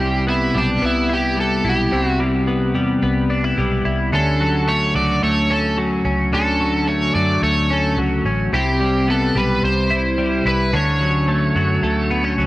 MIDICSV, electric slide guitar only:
0, 0, Header, 1, 2, 480
1, 0, Start_track
1, 0, Key_signature, 2, "major"
1, 0, Tempo, 550459
1, 1678, Time_signature, 4, 2, 24, 8
1, 10870, End_track
2, 0, Start_track
2, 0, Title_t, "Electric slide guitar"
2, 0, Program_c, 0, 29
2, 0, Note_on_c, 0, 67, 72
2, 212, Note_off_c, 0, 67, 0
2, 255, Note_on_c, 0, 64, 81
2, 493, Note_off_c, 0, 64, 0
2, 502, Note_on_c, 0, 62, 67
2, 736, Note_off_c, 0, 62, 0
2, 745, Note_on_c, 0, 64, 80
2, 978, Note_off_c, 0, 64, 0
2, 987, Note_on_c, 0, 67, 80
2, 1219, Note_off_c, 0, 67, 0
2, 1226, Note_on_c, 0, 69, 90
2, 1459, Note_off_c, 0, 69, 0
2, 1474, Note_on_c, 0, 67, 80
2, 1788, Note_off_c, 0, 67, 0
2, 1788, Note_on_c, 0, 66, 80
2, 1903, Note_off_c, 0, 66, 0
2, 3618, Note_on_c, 0, 69, 59
2, 4086, Note_on_c, 0, 73, 89
2, 4102, Note_off_c, 0, 69, 0
2, 4305, Note_off_c, 0, 73, 0
2, 4325, Note_on_c, 0, 74, 77
2, 4565, Note_off_c, 0, 74, 0
2, 4568, Note_on_c, 0, 73, 93
2, 4810, Note_off_c, 0, 73, 0
2, 4812, Note_on_c, 0, 69, 67
2, 5029, Note_off_c, 0, 69, 0
2, 5533, Note_on_c, 0, 69, 67
2, 6004, Note_on_c, 0, 73, 88
2, 6019, Note_off_c, 0, 69, 0
2, 6233, Note_off_c, 0, 73, 0
2, 6237, Note_on_c, 0, 74, 94
2, 6482, Note_off_c, 0, 74, 0
2, 6485, Note_on_c, 0, 73, 85
2, 6729, Note_off_c, 0, 73, 0
2, 6737, Note_on_c, 0, 69, 61
2, 6951, Note_off_c, 0, 69, 0
2, 7457, Note_on_c, 0, 67, 71
2, 7937, Note_off_c, 0, 67, 0
2, 7941, Note_on_c, 0, 69, 75
2, 8174, Note_on_c, 0, 71, 74
2, 8176, Note_off_c, 0, 69, 0
2, 8412, Note_off_c, 0, 71, 0
2, 8415, Note_on_c, 0, 72, 87
2, 9137, Note_on_c, 0, 71, 84
2, 9148, Note_off_c, 0, 72, 0
2, 9374, Note_off_c, 0, 71, 0
2, 9378, Note_on_c, 0, 73, 89
2, 10773, Note_off_c, 0, 73, 0
2, 10870, End_track
0, 0, End_of_file